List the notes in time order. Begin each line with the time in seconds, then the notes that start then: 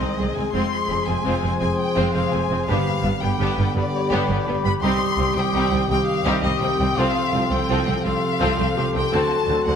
Already playing: D#3 G#3 C4 G#4 C5 D#5 C6
0.00 C2 G#3 D#4
0.17 C2 G#3 C4 G#4
0.35 C2 G#3 C4 D#4 G#5
0.53 F1 F2 F3 G#3 C4 F4 G#4 C5 C6
0.89 F1 F2 G#3 C4 G#4
1.06 F1 F2 G#3 C4 F4 G#4 G#5 C6
1.24 F1 F2 G#3 C4 F4 C5
1.42 F1 F2 G#3 C4 F4
1.60 F1 F2 G#3 C4 G#4 G#5 C6
1.79 G5
1.96 F1 F2 G#3 C4 F4 C5
2.14 F1 F2 G#3 C4 F4 G#4 F5 C6
2.32 F1 F2 G#3 C4 G#4 G#5
2.50 F1 F2 G#3 C4 F4
2.66 G1 G2 D3 G3 B3 D4 G4 F5 B5
3.03 G1 G2 G3 B3 D4
3.21 G1 G2 G3 B3 G4 G5 B5
3.39 G1 G2 G3 B3 D4 G4
3.57 G1 G2 G3 B3
3.75 G1 G2 G3 B3 D4 G4 D5 B5
4.11 G1 G2 G3 B3 D4 G4
4.29 G1 G2 G3 B3
4.47 G1 G2 G3 B3 D4
4.64 G1 G2 G3 B3 B5
4.82 C2 D#3 G3 C4 D#4 G4 C6 D#6
5.18 C2 G3 C4 D#4
5.36 C2 G3 C4 G4 G5 D#6
5.54 C2 G3 C4 D#4 G4
5.72 C2 G3 C4
5.90 C2 G3 C4 D#4 G4 G5 D#6
6.07 F5
6.25 C2 G3 C4 D#4 G4
6.43 C2 G3 C4 G4 D#5 D#6
6.60 C2 G3 C4 D#4 G5
6.79 C2 G3 C4
6.96 C2 C3 F3 C4 F4 A4 F5 C6
7.33 C2 F3 C4 F4
7.50 C2 F3 A3 C4 G5
7.69 C2 F3 C4 F4 A4
7.87 C2 F3 A3 C4
8.04 C2 F3 C4 F4 A4 F5 C6
8.39 C2 F3 C4 F4 A4
8.59 C2 F3 A3 C4
8.77 C2 F3 C4 F4 G4
8.94 C2 F3 A3 C4 G5
9.12 D2 D3 F#3 C4 F#4 A4 A5 C6
9.49 D2 D3 C4 D4 F#4
9.65 D2 D3 C4 D4 F#4 F#5 C6